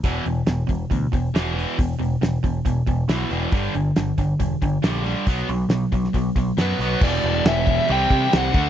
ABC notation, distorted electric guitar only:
X:1
M:4/4
L:1/8
Q:1/4=138
K:Em
V:1 name="Distorted electric guitar" clef=bass
[E,,B,,E,] [E,,B,,] [E,,B,,] [E,,B,,] [E,,B,,] [E,,B,,] [E,,B,,E,] [E,,B,,E,] | [E,,B,,] [E,,B,,] [E,,B,,] [E,,B,,] [E,,B,,] [E,,B,,] [E,,B,,E,] [E,,B,,E,] | [G,,D,G,] [G,,D,] [G,,D,] [G,,D,] [G,,D,] [G,,D,] [G,,D,G,] [G,,D,G,] | [B,,F,B,] [B,,F,] [B,,F,] [B,,F,] [B,,F,] [B,,F,] [B,,F,B,] [B,,F,B,] |
[E,,B,,E,G,B,E]4 [C,E,G,CE]3 [D,A,DF] |]